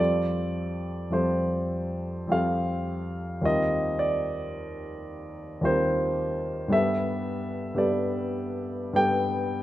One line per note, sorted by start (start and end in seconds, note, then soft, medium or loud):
0.00 1.08 F2 soft
0.00 1.09 G3 soft
0.00 1.10 C4 soft
0.00 1.10 F4 soft
0.00 1.11 A4 soft
0.00 1.14 D5 medium
1.10 2.26 F2 soft
1.10 2.27 G3 soft
1.10 2.28 C4 soft
1.10 2.29 F4 soft
1.10 2.30 A4 soft
1.10 2.33 C5 soft
2.27 3.38 F2 soft
2.27 3.39 G3 soft
2.27 3.39 C4 soft
2.27 3.40 F4 soft
2.32 3.41 A4 soft
2.32 3.43 F5 medium
3.41 5.58 D#2 soft
3.41 5.59 G3 soft
3.41 5.60 C4 soft
3.41 5.60 F4 soft
3.45 5.61 A#4 soft
3.45 4.00 D#5 medium
3.99 5.64 D5 soft
5.61 6.67 D#2 soft
5.61 6.68 G3 soft
5.61 6.69 C4 soft
5.61 6.69 F4 soft
5.61 6.69 A#4 soft
5.61 6.72 C5 medium
6.68 7.73 G2 soft
6.68 7.74 G3 soft
6.68 7.74 B3 soft
6.68 7.75 G4 soft
6.68 7.75 A4 soft
6.73 7.79 E5 medium
7.74 8.90 G2 soft
7.74 8.91 G3 soft
7.74 8.91 B3 soft
7.74 8.91 G4 soft
7.74 8.92 A4 soft
7.74 8.96 D5 soft
8.93 9.63 G2 soft
8.93 9.63 G3 soft
8.93 9.63 B3 soft
8.93 9.63 G4 soft
8.93 9.63 A4 soft
8.93 9.63 G5 medium